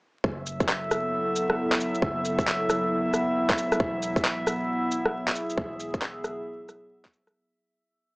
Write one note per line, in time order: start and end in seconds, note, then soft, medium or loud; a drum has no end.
0.24 2.01 F#1 medium
0.24 7.36 F#3 medium
0.24 7.36 E5 medium
0.24 kick loud
0.46 shaker medium
0.60 kick loud
0.60 shaker soft
0.65 3.80 A4 medium
0.65 clap loud
0.73 7.36 E4 medium
0.78 7.36 B3 medium
0.91 cross-stick soft
0.91 shaker medium
1.36 shaker medium
1.50 cross-stick medium
1.72 clap loud
1.80 shaker medium
1.95 shaker soft
2.02 3.78 F#1 medium
2.02 kick loud
2.25 shaker medium
2.39 kick loud
2.39 shaker soft
2.47 clap loud
2.70 cross-stick soft
2.70 shaker medium
3.14 cross-stick soft
3.14 shaker medium
3.50 kick loud
3.50 clap loud
3.58 shaker medium
3.72 cross-stick medium
3.72 shaker soft
3.80 5.56 E1 medium
3.80 kick loud
4.03 shaker medium
4.16 kick loud
4.16 shaker soft
4.25 clap loud
4.47 cross-stick soft
4.47 shaker medium
4.91 shaker medium
5.05 cross-stick medium
5.15 7.35 G#4 medium
5.28 clap loud
5.35 shaker medium
5.50 shaker soft
5.58 7.34 E1 medium
5.58 kick loud
5.80 shaker medium
5.94 kick loud
5.94 shaker soft
6.02 clap loud
6.24 cross-stick soft
6.24 shaker medium
6.69 cross-stick soft
6.69 shaker medium
7.05 kick loud
7.05 clap loud
7.13 shaker medium
7.27 cross-stick medium
7.27 shaker soft